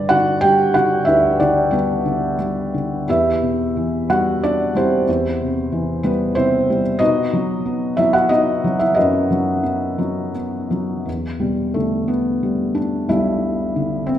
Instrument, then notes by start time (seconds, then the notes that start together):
felt piano
Already playing: G2 D3 G3 D4 G4 B4 D5
0.09 D3 F#4 F#5
0.41 G3 G4 G5
0.74 D3 F#4 F#5
1.05 D2 E4 G4 B4 E5
1.40 D3 D4 D5
1.71 G3 B3 D4 B4
2.06 D3
2.39 G3
2.74 D3
3.08 E2 E4 G4 B4 E5
3.42 B2
3.77 E3
4.10 G3 F#4 F#5
4.44 D4 D5
4.75 G3 C4 E4 G4 C5
5.08 E2
5.41 C3
5.72 E3
6.03 G3 B3 B4
6.35 C3 C4 E4 C5
6.70 G3
6.99 B2 D#4 F#4 B4 D#5
7.33 F#3
7.66 B3
7.97 F#3 E4 E5
8.13 F#4 F#5
8.29 B3 D#4 F#4 D#5
8.64 F#3
8.79 E4 E5
8.94 D#4 F#4 B4 D#5
8.99 F#2
9.31 F#3
9.64 B3
9.99 F#3
10.35 B3
10.71 F#3
11.06 E2
11.40 B2 G3
11.74 D3 A3
12.08 B3
12.43 G3
12.75 D4
13.09 B1 G3 E4
13.76 D3
14.07 C4